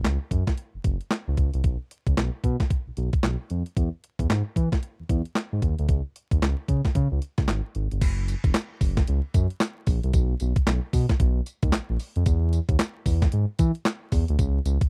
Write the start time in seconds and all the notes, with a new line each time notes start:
0.04 C#2, snare, clap, closed hi-hat
0.31 F#2, kick, closed hi-hat
0.47 kick, snare, closed hi-hat
0.58 closed hi-hat
0.74 F#1
0.84 F#1, kick, closed hi-hat
1.01 closed hi-hat
1.11 snare, clap, closed hi-hat
1.28 C#2
1.37 C#2, kick, closed hi-hat
1.54 C2, closed hi-hat
1.64 B1, kick, closed hi-hat
1.91 closed hi-hat
2.07 C#2, kick, closed hi-hat
2.17 B1, snare, clap, closed hi-hat
2.44 B2, kick, closed hi-hat
2.60 kick, snare, closed hi-hat
2.70 kick, closed hi-hat
2.87 B1
2.97 B1, closed hi-hat
3.13 kick, closed hi-hat
3.23 B1, snare, clap, closed hi-hat
3.50 F2, closed hi-hat
3.66 closed hi-hat
3.77 E2, kick, closed hi-hat
4.04 closed hi-hat
4.19 E2, kick, closed hi-hat
4.30 G#2, snare, clap, closed hi-hat
4.56 E3, kick, closed hi-hat
4.72 kick, snare, closed hi-hat
4.83 closed hi-hat
5.00 E2
5.09 E2, kick, closed hi-hat
5.25 closed hi-hat
5.35 snare, clap, closed hi-hat
5.53 G#2
5.62 D#2, kick, closed hi-hat
5.79 D2, closed hi-hat
5.89 C#2, kick, closed hi-hat
6.16 closed hi-hat
6.31 D#2, kick, closed hi-hat
6.42 C#2, snare, clap, closed hi-hat
6.68 C#3, kick, closed hi-hat
6.85 kick, snare, closed hi-hat
6.95 C#3, kick, closed hi-hat
7.12 C#2
7.22 closed hi-hat
7.38 C#2, kick, snare, closed hi-hat
7.48 G#1, snare, clap, closed hi-hat
7.75 G#1, closed hi-hat
7.92 G1, closed hi-hat
8.02 F#1, kick, closed hi-hat, crash, tambourine
8.28 closed hi-hat, tambourine
8.44 E1, kick, closed hi-hat
8.54 snare, clap, closed hi-hat, tambourine
8.81 F#1, kick, open hi-hat, tambourine
8.97 kick, snare, closed hi-hat
9.07 C#2, closed hi-hat
9.34 F#2, kick, closed hi-hat, tambourine
9.50 closed hi-hat
9.60 snare, clap, closed hi-hat, tambourine
9.87 A#1, kick, open hi-hat, tambourine
10.03 C2, closed hi-hat
10.13 B1, kick, closed hi-hat, tambourine
10.40 B1, closed hi-hat, tambourine
10.56 kick, closed hi-hat
10.67 B1, snare, clap, closed hi-hat, tambourine
10.93 B2, kick, open hi-hat, tambourine
11.09 kick, snare, closed hi-hat
11.20 B1, kick, closed hi-hat
11.46 closed hi-hat, tambourine
11.62 D#2, kick, closed hi-hat
11.72 A#1, snare, clap, closed hi-hat, tambourine
11.90 A#1
11.99 open hi-hat, tambourine
12.16 F2, closed hi-hat
12.26 E2, kick, closed hi-hat, tambourine
12.53 closed hi-hat, tambourine
12.69 D#2, kick, closed hi-hat
12.79 snare, clap, closed hi-hat, tambourine
13.06 E2, kick, open hi-hat, tambourine
13.22 kick, snare, closed hi-hat
13.32 G#2, closed hi-hat
13.59 E3, kick, closed hi-hat, tambourine
13.75 closed hi-hat
13.85 snare, clap, closed hi-hat, tambourine
14.12 E2, kick, open hi-hat, tambourine
14.28 D2, closed hi-hat
14.39 C#2, kick, closed hi-hat, tambourine
14.65 C#2, closed hi-hat, tambourine
14.81 kick, closed hi-hat